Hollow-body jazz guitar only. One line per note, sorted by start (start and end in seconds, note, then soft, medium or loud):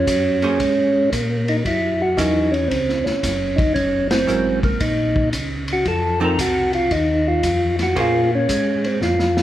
0.42 0.58 A#3 medium
0.42 0.59 C#4 medium
0.42 0.59 G#4 medium
0.42 0.59 C5 medium
2.17 2.49 F#3 soft
2.17 2.49 C#4 medium
2.17 2.50 E4 medium
2.17 2.50 A#4 medium
4.27 4.59 F#3 medium
4.27 4.59 C#4 medium
4.27 4.60 E4 medium
4.27 4.60 A#4 medium
6.20 6.36 F3 medium
6.20 6.37 C4 medium
6.20 6.37 D#4 medium
6.20 6.37 A4 medium
7.95 8.28 A#3 medium
7.95 8.28 C#4 medium
7.95 8.28 G#4 medium
7.95 8.28 C5 medium